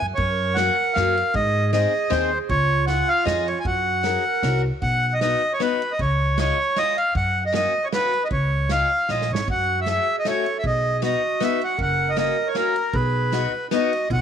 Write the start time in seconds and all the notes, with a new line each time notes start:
0.01 F#2
0.15 F#2 A#4 C#5, kick, ride
0.55 A#3 C#4 F#4 F#5, snare, ride
0.94 F#2 A#3 C#4 F#4 F5, snare, ride
1.17 ride
1.34 G#2 G#4 D#5, kick, ride
1.72 C4 D#4 G#4 D#5, snare, ride
2.10 D#2 C4 D#4 G#4 C5, snare, ride
2.49 C#2 F4 C#5, kick, ride
2.87 C#4 F4 G#4 F#5, snare, ride
3.09 F5
3.25 F2 C#4 F4 G#4 D#5, snare, ride
3.47 C#5, ride
3.60 G#5
3.65 F#2 F#4 F#5, kick, ride
4.03 C#4 F#4 G#4 A#4, snare, ride
4.25 A#4
4.43 C2 C#4 F#4 A#4, snare, ride
4.82 B1 F#5, kick, ride
5.13 D#5
5.21 B3 D#4 F#4 D#5, snare, ride
5.53 C#5
5.60 B3 D#4 F#4 B4, snare, ride
5.82 ride
5.92 D#5
5.99 C#2 C#5, kick, ride
6.38 G#3 C#4 F4 C#5, snare, ride
6.76 G#3 C#4 F4 D#5, snare, ride
6.97 F5, ride
7.15 F#2 F#5, kick, ride
7.46 D#5
7.53 A#3 C#4 F#4 D#5, snare, ride
7.84 C#5
7.92 A#3 C#4 F#4 B4, snare, ride
8.13 ride
8.25 D#5
8.31 C#2 C#5, kick, ride
8.69 G#3 C#4 F4 F5, snare, ride
9.08 A#1 G#3 C#4 F4 D#5, snare
9.21 snare
9.30 G#1 C#5
9.35 snare
9.47 F#2 F#4 F#5, kick, ride
9.81 E5
9.86 A3 C#4 F#4 G#4, snare, ride
9.90 E5
10.19 D#5
10.25 A3 C#4 F#4 A4 C#5, snare, ride
10.46 ride
10.59 G#4 E5
10.64 B1 D#5, kick, ride
11.02 B3 D#4 F#4 D#5, snare, ride
11.40 B3 D#4 F#4 E5, snare, ride
11.61 F#5, ride
11.78 F#1 A#4, kick, ride
11.82 F#5
12.10 D#5
12.16 A#3 C#4 F#4 D#5, snare, ride
12.48 C#5
12.55 A#3 C#4 F#4 A#4, snare, ride
12.76 ride
12.93 B1 G#4 B4, kick, ride
13.32 B3 D#4 F#4, snare, ride
13.71 B3 D#4 F#4 D#5, snare, ride
13.93 ride
14.10 B1 F#4 F#5, kick, ride